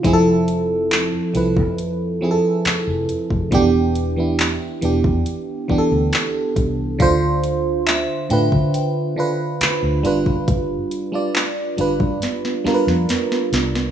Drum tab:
HH |x-x-x-x-x---x-x-|x-x-x-x-x---x-x-|x-x-x-x-x---x-x-|x-x-x-x-x---x-x-|
CP |----x-------x---|----x-------x---|----x-------x---|----x-----------|
SD |----------------|----------------|----------------|--------oooooooo|
BD |o------o-------o|o------o--o---o-|o------o-------o|o------o--------|